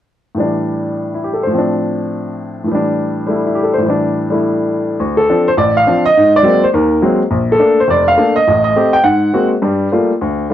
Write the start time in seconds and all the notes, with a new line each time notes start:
0.34 A2 E3 G3
0.40 D4
1.14 E4
1.24 G4
1.34 A4
1.43 A2 C5
1.51 F3 C4
1.58 D4
2.64 A2 E3
2.72 G3 D4
3.27 G3 A3 E4
3.46 E4
3.55 G4
3.64 A4
3.74 C5
3.78 A2
3.82 E3 G3
3.90 D4
4.30 G3 A3 E4
5.00 D2
5.17 A4
5.28 F3 C4 D4
5.48 C5
5.57 A1 D5
5.77 F5
5.87 F3 C4 D4
6.06 D#5
6.17 G#2
6.36 D5
6.43 F#3 G#3 A#3 C4
6.64 C5
6.74 D#2 A#4
7.02 F#3 G#3 A#3 C4
7.31 A#1
7.52 A4
7.59 A3 A#3 D4
7.80 C5
7.88 F1 D5
8.08 F5
8.18 A3 A#3 D4
8.36 D#5
8.47 A1 A2
8.64 D#5
8.76 A3 C4 G4
8.93 G5
9.04 G#2 F#5
9.33 G#3 A#3 C4 F#4
9.62 G2 G3
9.92 G3 A3 A#3 F4
10.21 D2
10.50 G3